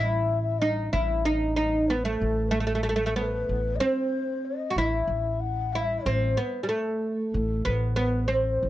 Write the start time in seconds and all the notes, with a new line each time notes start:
Already playing: A1 E4
0.01 D#5
0.08 E5
0.42 E5
0.58 D#4 D#5
0.92 A1 E4 E5
1.25 D#4 D#5
1.55 D#4 D#5
1.88 B3 B4
2.05 A3 A4
2.21 A1
2.46 B4
2.51 A3 A4
2.60 A3
2.67 A3
2.75 A3
2.83 A3
2.89 A3
2.96 A3
3.06 A3
3.16 B3 B4
3.49 A1
3.75 C5 D#5
3.80 C4
4.45 D#5
4.70 F#4
4.76 A1 E4 D#5
4.88 E5
5.07 A1
5.40 F#5
5.73 E4 E5
6.04 A1 C4 C5
6.37 B3
6.63 G3 A4
6.69 A3
7.32 A1 A4
7.65 A1 B3 B4
7.96 B3 B4
8.27 C4 C5
8.63 A1